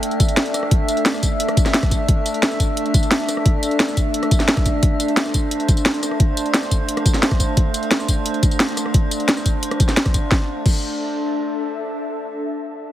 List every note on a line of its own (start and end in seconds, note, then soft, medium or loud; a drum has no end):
0.00 10.27 A3 medium
0.00 10.27 D4 medium
0.00 10.30 D4 medium
0.00 10.31 A4 medium
0.00 4.80 E5 medium
0.00 5.05 E5 medium
0.00 closed hi-hat loud
0.11 closed hi-hat soft
0.20 kick loud
0.20 closed hi-hat medium
0.20 tambourine medium
0.28 closed hi-hat soft
0.28 tambourine soft
0.37 snare loud
0.37 closed hi-hat loud
0.46 closed hi-hat soft
0.54 cross-stick soft
0.54 closed hi-hat medium
0.54 tambourine medium
0.63 cross-stick soft
0.71 kick loud
0.71 closed hi-hat medium
0.88 closed hi-hat medium
0.88 tambourine medium
0.97 closed hi-hat soft
1.06 snare loud
1.06 closed hi-hat medium
1.06 tambourine soft
1.14 cross-stick soft
1.14 tambourine soft
1.23 kick medium
1.23 closed hi-hat medium
1.23 tambourine medium
1.40 closed hi-hat loud
1.48 cross-stick medium
1.48 closed hi-hat soft
1.57 kick loud
1.57 closed hi-hat medium
1.57 tambourine medium
1.66 cross-stick soft
1.66 snare soft
1.66 closed hi-hat soft
1.66 tambourine soft
1.74 snare loud
1.74 closed hi-hat loud
1.83 kick loud
1.83 cross-stick soft
1.83 closed hi-hat soft
1.91 kick medium
1.91 closed hi-hat medium
1.91 tambourine medium
2.08 kick loud
2.08 closed hi-hat medium
2.26 closed hi-hat medium
2.26 tambourine medium
2.34 closed hi-hat soft
2.43 snare loud
2.43 closed hi-hat medium
2.43 tambourine soft
2.51 cross-stick soft
2.51 tambourine soft
2.60 kick medium
2.60 closed hi-hat medium
2.60 tambourine medium
2.77 closed hi-hat medium
2.86 closed hi-hat soft
2.94 kick loud
2.94 closed hi-hat medium
2.94 tambourine medium
3.03 closed hi-hat soft
3.03 tambourine soft
3.11 snare loud
3.11 closed hi-hat medium
3.20 closed hi-hat soft
3.28 cross-stick soft
3.28 closed hi-hat medium
3.28 tambourine medium
3.37 cross-stick soft
3.46 kick loud
3.46 closed hi-hat medium
3.63 closed hi-hat medium
3.63 tambourine medium
3.71 closed hi-hat soft
3.80 snare loud
3.80 closed hi-hat medium
3.80 tambourine soft
3.88 cross-stick soft
3.88 tambourine soft
3.97 kick medium
3.97 closed hi-hat medium
3.97 tambourine medium
4.14 closed hi-hat medium
4.23 cross-stick medium
4.23 closed hi-hat soft
4.31 kick loud
4.31 closed hi-hat medium
4.31 tambourine medium
4.40 cross-stick soft
4.40 snare soft
4.40 closed hi-hat soft
4.40 tambourine soft
4.48 snare loud
4.48 closed hi-hat medium
4.57 kick loud
4.57 cross-stick soft
4.57 closed hi-hat soft
4.66 kick medium
4.66 closed hi-hat medium
4.66 tambourine medium
4.83 10.29 C5 medium
4.83 kick loud
4.83 closed hi-hat medium
5.00 10.33 A5 medium
5.00 closed hi-hat medium
5.00 tambourine medium
5.08 closed hi-hat soft
5.17 snare loud
5.17 closed hi-hat medium
5.17 tambourine soft
5.26 cross-stick soft
5.26 tambourine soft
5.34 kick medium
5.34 closed hi-hat medium
5.34 tambourine medium
5.51 closed hi-hat medium
5.60 closed hi-hat soft
5.68 kick loud
5.68 closed hi-hat medium
5.68 tambourine medium
5.77 closed hi-hat soft
5.77 tambourine soft
5.86 snare loud
5.86 closed hi-hat medium
5.94 closed hi-hat soft
6.03 cross-stick soft
6.03 closed hi-hat medium
6.03 tambourine medium
6.11 cross-stick soft
6.20 kick loud
6.20 closed hi-hat medium
6.37 closed hi-hat medium
6.37 tambourine medium
6.46 closed hi-hat soft
6.54 snare loud
6.54 closed hi-hat medium
6.54 tambourine soft
6.63 cross-stick soft
6.63 tambourine soft
6.71 kick medium
6.71 closed hi-hat medium
6.71 tambourine medium
6.89 closed hi-hat loud
6.97 cross-stick medium
6.97 closed hi-hat soft
7.06 kick loud
7.06 closed hi-hat medium
7.06 tambourine medium
7.14 cross-stick soft
7.14 snare soft
7.14 closed hi-hat soft
7.14 tambourine soft
7.23 snare loud
7.23 closed hi-hat loud
7.31 kick loud
7.31 cross-stick soft
7.31 closed hi-hat soft
7.40 kick medium
7.40 closed hi-hat medium
7.40 tambourine medium
7.57 kick loud
7.57 closed hi-hat medium
7.74 closed hi-hat medium
7.74 tambourine medium
7.83 closed hi-hat soft
7.91 snare loud
7.91 closed hi-hat loud
7.91 tambourine soft
8.00 cross-stick soft
8.00 tambourine soft
8.08 kick medium
8.08 closed hi-hat medium
8.08 tambourine medium
8.26 closed hi-hat loud
8.34 closed hi-hat soft
8.43 kick loud
8.43 closed hi-hat medium
8.43 tambourine medium
8.51 closed hi-hat soft
8.51 tambourine soft
8.60 snare loud
8.60 closed hi-hat loud
8.69 closed hi-hat soft
8.77 cross-stick soft
8.77 closed hi-hat medium
8.77 tambourine medium
8.86 cross-stick soft
8.94 kick loud
8.94 closed hi-hat loud
9.11 closed hi-hat medium
9.11 tambourine medium
9.20 closed hi-hat soft
9.29 snare loud
9.29 closed hi-hat loud
9.29 tambourine soft
9.37 cross-stick soft
9.37 tambourine soft
9.46 kick medium
9.46 closed hi-hat medium
9.46 tambourine medium
9.63 closed hi-hat loud
9.71 cross-stick medium
9.71 closed hi-hat soft
9.80 kick loud
9.80 closed hi-hat medium
9.80 tambourine medium
9.89 cross-stick soft
9.89 snare soft
9.89 closed hi-hat soft
9.89 tambourine soft
9.97 snare loud
9.97 closed hi-hat loud
10.06 kick loud
10.06 cross-stick soft
10.06 closed hi-hat soft
10.14 kick medium
10.14 closed hi-hat medium
10.14 tambourine medium
10.31 11.64 D4 medium
10.31 kick loud
10.31 snare medium
10.37 11.65 A4 medium
10.42 11.65 E5 medium
10.66 kick loud
10.66 crash medium